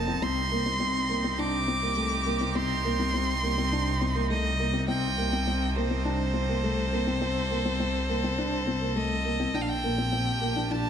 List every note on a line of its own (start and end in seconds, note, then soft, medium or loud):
0.00 0.19 F1 medium
0.00 0.23 F3 medium
0.00 10.90 C4 medium
0.00 9.55 D#4 medium
0.00 0.23 A4 medium
0.00 0.24 A5 loud
0.08 0.16 C4 medium
0.22 9.51 C2 medium
0.22 9.54 C3 medium
0.22 0.39 C4 loud
0.22 1.40 C6 loud
0.51 0.60 A#3 medium
0.66 0.74 C4 medium
0.66 5.36 G4 medium
0.80 0.97 C4 medium
1.09 1.18 A#3 medium
1.24 1.32 C4 medium
1.38 1.55 D4 medium
1.38 2.57 D6 loud
1.68 1.76 C4 medium
1.82 1.91 A#3 medium
1.97 2.13 A3 medium
2.26 2.34 A#3 medium
2.41 2.49 C4 medium
2.55 2.72 C4 loud
2.55 4.30 C6 loud
2.85 2.93 A#3 medium
2.99 3.07 C4 medium
3.14 3.30 C4 medium
3.43 3.51 A#3 medium
3.58 3.66 C4 medium
3.72 3.89 D4 medium
4.01 4.09 C4 medium
4.15 4.24 A#3 medium
4.30 4.47 A3 medium
4.30 4.85 D#5 loud
4.60 4.68 A#3 medium
4.73 4.82 C4 medium
4.88 5.05 C4 loud
4.88 5.77 G5 loud
5.18 5.26 A#3 medium
5.18 10.90 A4 medium
5.33 5.41 C4 medium
5.47 5.63 C4 medium
5.76 5.84 A#3 medium
5.76 8.98 C5 loud
5.91 5.99 C4 medium
6.05 6.21 D4 medium
6.34 6.42 C4 medium
6.49 6.57 A#3 medium
6.64 6.80 A3 medium
6.92 7.01 A#3 medium
7.07 7.15 C4 medium
7.21 7.38 C4 loud
7.51 7.59 A#3 medium
7.65 7.73 C4 medium
7.80 7.96 C4 medium
8.09 8.17 A#3 medium
8.24 8.32 C4 medium
8.38 8.54 D4 medium
8.67 8.75 C4 medium
8.82 8.90 A#3 medium
8.96 9.12 A3 medium
8.96 9.56 D#5 loud
9.25 9.33 A#3 medium
9.40 9.48 C4 medium
9.54 10.90 A#1 medium
9.54 10.90 A#2 medium
9.54 9.71 D4 loud
9.54 9.63 G5 loud
9.61 9.70 F5 medium
9.69 10.73 G5 loud
9.84 9.92 A#3 medium
9.90 10.90 G4 medium
9.98 10.90 A#3 medium
9.98 10.06 C4 medium
10.12 10.29 C4 medium
10.12 10.90 D4 medium
10.41 10.50 A#3 medium
10.56 10.64 D4 medium
10.71 10.87 D4 medium
10.71 10.90 A5 loud